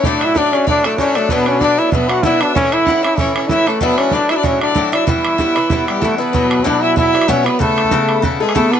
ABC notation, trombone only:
X:1
M:4/4
L:1/16
Q:"Swing" 1/4=190
K:Edor
V:1 name="Trombone"
D2 E2 D2 C2 D2 A,2 C2 A,2 | B,2 C2 D2 E2 B,2 F2 E2 D2 | C2 E4 E2 C2 C2 E2 A,2 | B,2 C2 D2 E D C2 D4 E2 |
E8- E2 G,2 A,2 B,2- | B,4 D2 E2 E4 C2 B,2 | A,8 z2 ^G,2 A,2 B,2 |]